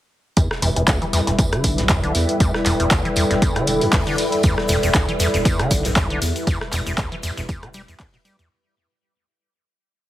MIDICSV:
0, 0, Header, 1, 6, 480
1, 0, Start_track
1, 0, Key_signature, 1, "minor"
1, 0, Tempo, 508475
1, 348, Time_signature, 4, 2, 24, 8
1, 9532, End_track
2, 0, Start_track
2, 0, Title_t, "Ambient pad"
2, 0, Program_c, 0, 92
2, 347, Note_on_c, 0, 64, 85
2, 583, Note_on_c, 0, 69, 88
2, 742, Note_on_c, 0, 74, 91
2, 1193, Note_on_c, 0, 79, 82
2, 8028, Note_off_c, 0, 64, 0
2, 8028, Note_off_c, 0, 69, 0
2, 8028, Note_off_c, 0, 74, 0
2, 8028, Note_off_c, 0, 79, 0
2, 9532, End_track
3, 0, Start_track
3, 0, Title_t, "String machine"
3, 0, Program_c, 1, 50
3, 348, Note_on_c, 1, 55, 79
3, 348, Note_on_c, 1, 64, 70
3, 348, Note_on_c, 1, 71, 87
3, 7990, Note_off_c, 1, 64, 0
3, 7990, Note_off_c, 1, 71, 0
3, 7991, Note_off_c, 1, 55, 0
3, 9532, End_track
4, 0, Start_track
4, 0, Title_t, "Acid bass"
4, 0, Program_c, 2, 38
4, 347, Note_on_c, 2, 40, 100
4, 458, Note_off_c, 2, 40, 0
4, 588, Note_on_c, 2, 40, 96
4, 662, Note_off_c, 2, 40, 0
4, 721, Note_on_c, 2, 40, 76
4, 780, Note_off_c, 2, 40, 0
4, 828, Note_on_c, 2, 38, 95
4, 938, Note_off_c, 2, 38, 0
4, 961, Note_on_c, 2, 52, 73
4, 996, Note_off_c, 2, 52, 0
4, 1067, Note_on_c, 2, 40, 96
4, 1141, Note_off_c, 2, 40, 0
4, 1200, Note_on_c, 2, 40, 73
4, 1236, Note_off_c, 2, 40, 0
4, 1306, Note_on_c, 2, 40, 78
4, 1439, Note_on_c, 2, 50, 99
4, 1453, Note_off_c, 2, 40, 0
4, 1680, Note_on_c, 2, 40, 73
4, 1694, Note_off_c, 2, 50, 0
4, 1740, Note_off_c, 2, 40, 0
4, 1787, Note_on_c, 2, 40, 98
4, 1897, Note_off_c, 2, 40, 0
4, 1920, Note_on_c, 2, 50, 75
4, 2009, Note_off_c, 2, 50, 0
4, 2269, Note_on_c, 2, 40, 99
4, 2378, Note_off_c, 2, 40, 0
4, 2507, Note_on_c, 2, 40, 98
4, 2581, Note_off_c, 2, 40, 0
4, 2641, Note_on_c, 2, 40, 75
4, 2700, Note_off_c, 2, 40, 0
4, 2747, Note_on_c, 2, 38, 99
4, 2857, Note_off_c, 2, 38, 0
4, 2881, Note_on_c, 2, 52, 74
4, 2916, Note_off_c, 2, 52, 0
4, 2987, Note_on_c, 2, 40, 98
4, 3061, Note_off_c, 2, 40, 0
4, 3120, Note_on_c, 2, 40, 73
4, 3156, Note_off_c, 2, 40, 0
4, 3227, Note_on_c, 2, 40, 81
4, 3360, Note_on_c, 2, 50, 100
4, 3374, Note_off_c, 2, 40, 0
4, 3599, Note_on_c, 2, 40, 76
4, 3614, Note_off_c, 2, 50, 0
4, 3659, Note_off_c, 2, 40, 0
4, 3707, Note_on_c, 2, 40, 101
4, 3817, Note_off_c, 2, 40, 0
4, 3841, Note_on_c, 2, 50, 74
4, 3930, Note_off_c, 2, 50, 0
4, 4188, Note_on_c, 2, 40, 100
4, 4298, Note_off_c, 2, 40, 0
4, 4427, Note_on_c, 2, 40, 100
4, 4501, Note_off_c, 2, 40, 0
4, 4560, Note_on_c, 2, 40, 75
4, 4620, Note_off_c, 2, 40, 0
4, 4667, Note_on_c, 2, 38, 97
4, 4777, Note_off_c, 2, 38, 0
4, 4799, Note_on_c, 2, 52, 73
4, 4836, Note_off_c, 2, 52, 0
4, 4906, Note_on_c, 2, 40, 99
4, 4980, Note_off_c, 2, 40, 0
4, 5039, Note_on_c, 2, 40, 75
4, 5076, Note_off_c, 2, 40, 0
4, 5146, Note_on_c, 2, 40, 81
4, 5279, Note_on_c, 2, 50, 102
4, 5294, Note_off_c, 2, 40, 0
4, 5520, Note_on_c, 2, 40, 75
4, 5534, Note_off_c, 2, 50, 0
4, 5580, Note_off_c, 2, 40, 0
4, 5627, Note_on_c, 2, 40, 100
4, 5738, Note_off_c, 2, 40, 0
4, 5760, Note_on_c, 2, 50, 75
4, 5849, Note_off_c, 2, 50, 0
4, 6107, Note_on_c, 2, 40, 104
4, 6218, Note_off_c, 2, 40, 0
4, 6347, Note_on_c, 2, 40, 98
4, 6421, Note_off_c, 2, 40, 0
4, 6480, Note_on_c, 2, 40, 78
4, 6540, Note_off_c, 2, 40, 0
4, 6586, Note_on_c, 2, 38, 101
4, 6697, Note_off_c, 2, 38, 0
4, 6721, Note_on_c, 2, 52, 74
4, 6757, Note_off_c, 2, 52, 0
4, 6828, Note_on_c, 2, 40, 102
4, 6901, Note_off_c, 2, 40, 0
4, 6961, Note_on_c, 2, 40, 73
4, 6997, Note_off_c, 2, 40, 0
4, 7067, Note_on_c, 2, 40, 82
4, 7200, Note_on_c, 2, 50, 101
4, 7215, Note_off_c, 2, 40, 0
4, 7260, Note_off_c, 2, 50, 0
4, 7309, Note_on_c, 2, 55, 102
4, 7382, Note_off_c, 2, 55, 0
4, 7441, Note_on_c, 2, 40, 76
4, 7500, Note_off_c, 2, 40, 0
4, 7680, Note_on_c, 2, 47, 75
4, 7716, Note_off_c, 2, 47, 0
4, 7787, Note_on_c, 2, 55, 77
4, 7897, Note_off_c, 2, 55, 0
4, 7920, Note_on_c, 2, 40, 103
4, 8009, Note_off_c, 2, 40, 0
4, 9532, End_track
5, 0, Start_track
5, 0, Title_t, "Sub bass"
5, 0, Program_c, 3, 38
5, 588, Note_on_c, 3, 28, 95
5, 687, Note_off_c, 3, 28, 0
5, 720, Note_on_c, 3, 28, 96
5, 800, Note_off_c, 3, 28, 0
5, 1200, Note_on_c, 3, 28, 91
5, 1280, Note_off_c, 3, 28, 0
5, 1549, Note_on_c, 3, 35, 89
5, 1984, Note_off_c, 3, 35, 0
5, 2028, Note_on_c, 3, 40, 97
5, 2127, Note_off_c, 3, 40, 0
5, 2508, Note_on_c, 3, 28, 96
5, 2607, Note_off_c, 3, 28, 0
5, 2641, Note_on_c, 3, 28, 97
5, 2720, Note_off_c, 3, 28, 0
5, 3121, Note_on_c, 3, 28, 93
5, 3200, Note_off_c, 3, 28, 0
5, 3468, Note_on_c, 3, 28, 93
5, 3567, Note_off_c, 3, 28, 0
5, 4429, Note_on_c, 3, 28, 100
5, 4527, Note_off_c, 3, 28, 0
5, 4561, Note_on_c, 3, 28, 98
5, 4641, Note_off_c, 3, 28, 0
5, 5041, Note_on_c, 3, 28, 95
5, 5120, Note_off_c, 3, 28, 0
5, 5389, Note_on_c, 3, 35, 93
5, 5824, Note_off_c, 3, 35, 0
5, 5869, Note_on_c, 3, 40, 97
5, 5967, Note_off_c, 3, 40, 0
5, 6348, Note_on_c, 3, 28, 100
5, 6447, Note_off_c, 3, 28, 0
5, 6481, Note_on_c, 3, 28, 97
5, 6561, Note_off_c, 3, 28, 0
5, 6961, Note_on_c, 3, 28, 93
5, 7041, Note_off_c, 3, 28, 0
5, 7308, Note_on_c, 3, 28, 94
5, 7407, Note_off_c, 3, 28, 0
5, 9532, End_track
6, 0, Start_track
6, 0, Title_t, "Drums"
6, 347, Note_on_c, 9, 42, 77
6, 349, Note_on_c, 9, 36, 110
6, 352, Note_on_c, 9, 54, 81
6, 442, Note_off_c, 9, 42, 0
6, 443, Note_off_c, 9, 36, 0
6, 447, Note_off_c, 9, 54, 0
6, 481, Note_on_c, 9, 37, 78
6, 487, Note_on_c, 9, 38, 48
6, 575, Note_off_c, 9, 37, 0
6, 582, Note_off_c, 9, 38, 0
6, 589, Note_on_c, 9, 46, 95
6, 590, Note_on_c, 9, 54, 59
6, 683, Note_off_c, 9, 46, 0
6, 685, Note_off_c, 9, 54, 0
6, 722, Note_on_c, 9, 42, 52
6, 816, Note_off_c, 9, 42, 0
6, 823, Note_on_c, 9, 38, 113
6, 828, Note_on_c, 9, 39, 111
6, 829, Note_on_c, 9, 36, 109
6, 829, Note_on_c, 9, 42, 75
6, 831, Note_on_c, 9, 54, 86
6, 917, Note_off_c, 9, 38, 0
6, 923, Note_off_c, 9, 36, 0
6, 923, Note_off_c, 9, 39, 0
6, 923, Note_off_c, 9, 42, 0
6, 925, Note_off_c, 9, 54, 0
6, 961, Note_on_c, 9, 42, 35
6, 1056, Note_off_c, 9, 42, 0
6, 1069, Note_on_c, 9, 46, 99
6, 1077, Note_on_c, 9, 38, 52
6, 1077, Note_on_c, 9, 54, 67
6, 1163, Note_off_c, 9, 46, 0
6, 1171, Note_off_c, 9, 38, 0
6, 1171, Note_off_c, 9, 54, 0
6, 1193, Note_on_c, 9, 38, 40
6, 1202, Note_on_c, 9, 42, 52
6, 1287, Note_off_c, 9, 38, 0
6, 1296, Note_off_c, 9, 42, 0
6, 1308, Note_on_c, 9, 42, 76
6, 1309, Note_on_c, 9, 36, 111
6, 1312, Note_on_c, 9, 54, 88
6, 1402, Note_off_c, 9, 42, 0
6, 1403, Note_off_c, 9, 36, 0
6, 1407, Note_off_c, 9, 54, 0
6, 1441, Note_on_c, 9, 37, 72
6, 1441, Note_on_c, 9, 42, 36
6, 1536, Note_off_c, 9, 37, 0
6, 1536, Note_off_c, 9, 42, 0
6, 1545, Note_on_c, 9, 54, 63
6, 1548, Note_on_c, 9, 46, 101
6, 1549, Note_on_c, 9, 36, 56
6, 1640, Note_off_c, 9, 54, 0
6, 1642, Note_off_c, 9, 46, 0
6, 1643, Note_off_c, 9, 36, 0
6, 1679, Note_on_c, 9, 38, 52
6, 1682, Note_on_c, 9, 42, 53
6, 1773, Note_off_c, 9, 38, 0
6, 1777, Note_off_c, 9, 42, 0
6, 1785, Note_on_c, 9, 38, 117
6, 1788, Note_on_c, 9, 39, 117
6, 1788, Note_on_c, 9, 42, 76
6, 1789, Note_on_c, 9, 36, 114
6, 1789, Note_on_c, 9, 54, 83
6, 1879, Note_off_c, 9, 38, 0
6, 1882, Note_off_c, 9, 39, 0
6, 1883, Note_off_c, 9, 36, 0
6, 1883, Note_off_c, 9, 42, 0
6, 1883, Note_off_c, 9, 54, 0
6, 1922, Note_on_c, 9, 42, 35
6, 2016, Note_off_c, 9, 42, 0
6, 2027, Note_on_c, 9, 46, 97
6, 2031, Note_on_c, 9, 38, 48
6, 2035, Note_on_c, 9, 54, 67
6, 2122, Note_off_c, 9, 46, 0
6, 2126, Note_off_c, 9, 38, 0
6, 2130, Note_off_c, 9, 54, 0
6, 2161, Note_on_c, 9, 42, 53
6, 2255, Note_off_c, 9, 42, 0
6, 2267, Note_on_c, 9, 54, 91
6, 2268, Note_on_c, 9, 42, 77
6, 2269, Note_on_c, 9, 36, 114
6, 2362, Note_off_c, 9, 54, 0
6, 2363, Note_off_c, 9, 36, 0
6, 2363, Note_off_c, 9, 42, 0
6, 2401, Note_on_c, 9, 38, 40
6, 2402, Note_on_c, 9, 37, 73
6, 2496, Note_off_c, 9, 37, 0
6, 2496, Note_off_c, 9, 38, 0
6, 2509, Note_on_c, 9, 39, 36
6, 2509, Note_on_c, 9, 54, 67
6, 2510, Note_on_c, 9, 46, 99
6, 2603, Note_off_c, 9, 39, 0
6, 2603, Note_off_c, 9, 54, 0
6, 2604, Note_off_c, 9, 46, 0
6, 2643, Note_on_c, 9, 42, 51
6, 2737, Note_off_c, 9, 42, 0
6, 2743, Note_on_c, 9, 38, 101
6, 2744, Note_on_c, 9, 54, 83
6, 2748, Note_on_c, 9, 39, 118
6, 2749, Note_on_c, 9, 36, 118
6, 2749, Note_on_c, 9, 42, 75
6, 2838, Note_off_c, 9, 38, 0
6, 2839, Note_off_c, 9, 54, 0
6, 2842, Note_off_c, 9, 39, 0
6, 2843, Note_off_c, 9, 36, 0
6, 2843, Note_off_c, 9, 42, 0
6, 2882, Note_on_c, 9, 42, 35
6, 2977, Note_off_c, 9, 42, 0
6, 2981, Note_on_c, 9, 54, 71
6, 2988, Note_on_c, 9, 46, 103
6, 3076, Note_off_c, 9, 54, 0
6, 3083, Note_off_c, 9, 46, 0
6, 3121, Note_on_c, 9, 38, 49
6, 3122, Note_on_c, 9, 42, 51
6, 3216, Note_off_c, 9, 38, 0
6, 3216, Note_off_c, 9, 42, 0
6, 3229, Note_on_c, 9, 36, 116
6, 3229, Note_on_c, 9, 42, 75
6, 3231, Note_on_c, 9, 54, 78
6, 3323, Note_off_c, 9, 36, 0
6, 3324, Note_off_c, 9, 42, 0
6, 3326, Note_off_c, 9, 54, 0
6, 3361, Note_on_c, 9, 37, 72
6, 3361, Note_on_c, 9, 42, 35
6, 3456, Note_off_c, 9, 37, 0
6, 3456, Note_off_c, 9, 42, 0
6, 3465, Note_on_c, 9, 54, 65
6, 3468, Note_on_c, 9, 46, 107
6, 3560, Note_off_c, 9, 54, 0
6, 3563, Note_off_c, 9, 46, 0
6, 3601, Note_on_c, 9, 46, 63
6, 3695, Note_off_c, 9, 46, 0
6, 3707, Note_on_c, 9, 39, 115
6, 3707, Note_on_c, 9, 46, 78
6, 3708, Note_on_c, 9, 42, 78
6, 3709, Note_on_c, 9, 36, 119
6, 3711, Note_on_c, 9, 38, 112
6, 3801, Note_off_c, 9, 46, 0
6, 3802, Note_off_c, 9, 39, 0
6, 3803, Note_off_c, 9, 36, 0
6, 3803, Note_off_c, 9, 42, 0
6, 3805, Note_off_c, 9, 38, 0
6, 3841, Note_on_c, 9, 42, 35
6, 3936, Note_off_c, 9, 42, 0
6, 3946, Note_on_c, 9, 38, 50
6, 3948, Note_on_c, 9, 46, 104
6, 3951, Note_on_c, 9, 54, 71
6, 4040, Note_off_c, 9, 38, 0
6, 4043, Note_off_c, 9, 46, 0
6, 4045, Note_off_c, 9, 54, 0
6, 4081, Note_on_c, 9, 42, 51
6, 4176, Note_off_c, 9, 42, 0
6, 4184, Note_on_c, 9, 54, 93
6, 4188, Note_on_c, 9, 42, 73
6, 4189, Note_on_c, 9, 36, 121
6, 4190, Note_on_c, 9, 82, 36
6, 4278, Note_off_c, 9, 54, 0
6, 4283, Note_off_c, 9, 36, 0
6, 4283, Note_off_c, 9, 42, 0
6, 4285, Note_off_c, 9, 82, 0
6, 4321, Note_on_c, 9, 37, 76
6, 4325, Note_on_c, 9, 38, 54
6, 4416, Note_off_c, 9, 37, 0
6, 4419, Note_off_c, 9, 38, 0
6, 4423, Note_on_c, 9, 82, 94
6, 4425, Note_on_c, 9, 54, 59
6, 4428, Note_on_c, 9, 46, 102
6, 4518, Note_off_c, 9, 82, 0
6, 4519, Note_off_c, 9, 54, 0
6, 4523, Note_off_c, 9, 46, 0
6, 4562, Note_on_c, 9, 42, 48
6, 4562, Note_on_c, 9, 82, 57
6, 4656, Note_off_c, 9, 42, 0
6, 4656, Note_off_c, 9, 82, 0
6, 4668, Note_on_c, 9, 38, 117
6, 4668, Note_on_c, 9, 39, 117
6, 4669, Note_on_c, 9, 36, 117
6, 4669, Note_on_c, 9, 42, 72
6, 4674, Note_on_c, 9, 54, 84
6, 4763, Note_off_c, 9, 36, 0
6, 4763, Note_off_c, 9, 38, 0
6, 4763, Note_off_c, 9, 39, 0
6, 4764, Note_off_c, 9, 42, 0
6, 4769, Note_off_c, 9, 54, 0
6, 4802, Note_on_c, 9, 42, 34
6, 4896, Note_off_c, 9, 42, 0
6, 4908, Note_on_c, 9, 46, 106
6, 4908, Note_on_c, 9, 54, 70
6, 4908, Note_on_c, 9, 82, 90
6, 4912, Note_on_c, 9, 38, 57
6, 5002, Note_off_c, 9, 82, 0
6, 5003, Note_off_c, 9, 46, 0
6, 5003, Note_off_c, 9, 54, 0
6, 5007, Note_off_c, 9, 38, 0
6, 5040, Note_on_c, 9, 42, 50
6, 5043, Note_on_c, 9, 38, 43
6, 5047, Note_on_c, 9, 82, 52
6, 5135, Note_off_c, 9, 42, 0
6, 5137, Note_off_c, 9, 38, 0
6, 5141, Note_off_c, 9, 82, 0
6, 5146, Note_on_c, 9, 82, 36
6, 5148, Note_on_c, 9, 42, 72
6, 5149, Note_on_c, 9, 36, 123
6, 5156, Note_on_c, 9, 54, 89
6, 5241, Note_off_c, 9, 82, 0
6, 5242, Note_off_c, 9, 42, 0
6, 5243, Note_off_c, 9, 36, 0
6, 5251, Note_off_c, 9, 54, 0
6, 5281, Note_on_c, 9, 37, 72
6, 5281, Note_on_c, 9, 42, 34
6, 5375, Note_off_c, 9, 37, 0
6, 5375, Note_off_c, 9, 42, 0
6, 5386, Note_on_c, 9, 54, 68
6, 5388, Note_on_c, 9, 46, 109
6, 5389, Note_on_c, 9, 36, 61
6, 5392, Note_on_c, 9, 82, 83
6, 5480, Note_off_c, 9, 54, 0
6, 5483, Note_off_c, 9, 36, 0
6, 5483, Note_off_c, 9, 46, 0
6, 5487, Note_off_c, 9, 82, 0
6, 5516, Note_on_c, 9, 38, 54
6, 5522, Note_on_c, 9, 42, 50
6, 5525, Note_on_c, 9, 82, 52
6, 5611, Note_off_c, 9, 38, 0
6, 5616, Note_off_c, 9, 42, 0
6, 5619, Note_off_c, 9, 82, 0
6, 5621, Note_on_c, 9, 38, 117
6, 5628, Note_on_c, 9, 39, 119
6, 5629, Note_on_c, 9, 36, 123
6, 5629, Note_on_c, 9, 42, 74
6, 5629, Note_on_c, 9, 82, 42
6, 5632, Note_on_c, 9, 54, 84
6, 5715, Note_off_c, 9, 38, 0
6, 5723, Note_off_c, 9, 36, 0
6, 5723, Note_off_c, 9, 39, 0
6, 5723, Note_off_c, 9, 42, 0
6, 5723, Note_off_c, 9, 82, 0
6, 5727, Note_off_c, 9, 54, 0
6, 5762, Note_on_c, 9, 42, 35
6, 5856, Note_off_c, 9, 42, 0
6, 5869, Note_on_c, 9, 46, 106
6, 5870, Note_on_c, 9, 54, 70
6, 5872, Note_on_c, 9, 38, 50
6, 5875, Note_on_c, 9, 82, 85
6, 5963, Note_off_c, 9, 46, 0
6, 5964, Note_off_c, 9, 54, 0
6, 5966, Note_off_c, 9, 38, 0
6, 5970, Note_off_c, 9, 82, 0
6, 6000, Note_on_c, 9, 82, 50
6, 6002, Note_on_c, 9, 42, 50
6, 6095, Note_off_c, 9, 82, 0
6, 6096, Note_off_c, 9, 42, 0
6, 6108, Note_on_c, 9, 54, 81
6, 6109, Note_on_c, 9, 36, 118
6, 6109, Note_on_c, 9, 42, 74
6, 6114, Note_on_c, 9, 82, 41
6, 6203, Note_off_c, 9, 36, 0
6, 6203, Note_off_c, 9, 42, 0
6, 6203, Note_off_c, 9, 54, 0
6, 6209, Note_off_c, 9, 82, 0
6, 6239, Note_on_c, 9, 38, 41
6, 6242, Note_on_c, 9, 37, 75
6, 6333, Note_off_c, 9, 38, 0
6, 6337, Note_off_c, 9, 37, 0
6, 6348, Note_on_c, 9, 54, 72
6, 6349, Note_on_c, 9, 39, 34
6, 6349, Note_on_c, 9, 82, 95
6, 6350, Note_on_c, 9, 46, 102
6, 6442, Note_off_c, 9, 54, 0
6, 6443, Note_off_c, 9, 39, 0
6, 6444, Note_off_c, 9, 46, 0
6, 6444, Note_off_c, 9, 82, 0
6, 6479, Note_on_c, 9, 82, 53
6, 6482, Note_on_c, 9, 42, 49
6, 6574, Note_off_c, 9, 82, 0
6, 6577, Note_off_c, 9, 42, 0
6, 6588, Note_on_c, 9, 39, 113
6, 6589, Note_on_c, 9, 36, 123
6, 6589, Note_on_c, 9, 42, 72
6, 6589, Note_on_c, 9, 54, 82
6, 6592, Note_on_c, 9, 82, 38
6, 6596, Note_on_c, 9, 38, 114
6, 6683, Note_off_c, 9, 36, 0
6, 6683, Note_off_c, 9, 39, 0
6, 6684, Note_off_c, 9, 42, 0
6, 6684, Note_off_c, 9, 54, 0
6, 6687, Note_off_c, 9, 82, 0
6, 6690, Note_off_c, 9, 38, 0
6, 6721, Note_on_c, 9, 42, 33
6, 6816, Note_off_c, 9, 42, 0
6, 6826, Note_on_c, 9, 54, 72
6, 6829, Note_on_c, 9, 46, 106
6, 6829, Note_on_c, 9, 82, 90
6, 6921, Note_off_c, 9, 54, 0
6, 6923, Note_off_c, 9, 46, 0
6, 6923, Note_off_c, 9, 82, 0
6, 6960, Note_on_c, 9, 82, 50
6, 6962, Note_on_c, 9, 42, 49
6, 6963, Note_on_c, 9, 38, 52
6, 7055, Note_off_c, 9, 82, 0
6, 7057, Note_off_c, 9, 38, 0
6, 7057, Note_off_c, 9, 42, 0
6, 7069, Note_on_c, 9, 36, 122
6, 7069, Note_on_c, 9, 82, 36
6, 7070, Note_on_c, 9, 42, 73
6, 7071, Note_on_c, 9, 54, 85
6, 7163, Note_off_c, 9, 82, 0
6, 7164, Note_off_c, 9, 36, 0
6, 7165, Note_off_c, 9, 42, 0
6, 7166, Note_off_c, 9, 54, 0
6, 7202, Note_on_c, 9, 37, 75
6, 7202, Note_on_c, 9, 42, 34
6, 7297, Note_off_c, 9, 37, 0
6, 7297, Note_off_c, 9, 42, 0
6, 7305, Note_on_c, 9, 82, 88
6, 7307, Note_on_c, 9, 54, 64
6, 7309, Note_on_c, 9, 46, 110
6, 7400, Note_off_c, 9, 82, 0
6, 7402, Note_off_c, 9, 54, 0
6, 7403, Note_off_c, 9, 46, 0
6, 7442, Note_on_c, 9, 46, 61
6, 7445, Note_on_c, 9, 82, 53
6, 7537, Note_off_c, 9, 46, 0
6, 7540, Note_off_c, 9, 82, 0
6, 7544, Note_on_c, 9, 38, 110
6, 7544, Note_on_c, 9, 46, 81
6, 7549, Note_on_c, 9, 36, 122
6, 7549, Note_on_c, 9, 39, 116
6, 7549, Note_on_c, 9, 42, 74
6, 7639, Note_off_c, 9, 38, 0
6, 7639, Note_off_c, 9, 46, 0
6, 7643, Note_off_c, 9, 39, 0
6, 7644, Note_off_c, 9, 36, 0
6, 7644, Note_off_c, 9, 42, 0
6, 7683, Note_on_c, 9, 42, 35
6, 7778, Note_off_c, 9, 42, 0
6, 7785, Note_on_c, 9, 38, 55
6, 7789, Note_on_c, 9, 46, 105
6, 7789, Note_on_c, 9, 54, 65
6, 7795, Note_on_c, 9, 82, 82
6, 7879, Note_off_c, 9, 38, 0
6, 7883, Note_off_c, 9, 54, 0
6, 7884, Note_off_c, 9, 46, 0
6, 7889, Note_off_c, 9, 82, 0
6, 7920, Note_on_c, 9, 82, 48
6, 7923, Note_on_c, 9, 42, 50
6, 8015, Note_off_c, 9, 82, 0
6, 8017, Note_off_c, 9, 42, 0
6, 9532, End_track
0, 0, End_of_file